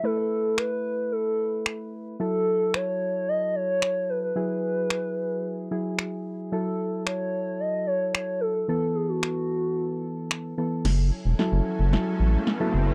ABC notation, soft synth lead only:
X:1
M:4/4
L:1/16
Q:1/4=111
K:F#m
V:1 name="Soft synth lead"
A4 B4 A6 z2 | A4 c4 ^d2 c4 B B- | B12- B2 z2 | A4 c4 ^d2 c2 c2 A2 |
A2 G F8- F3 z2 | z16 |]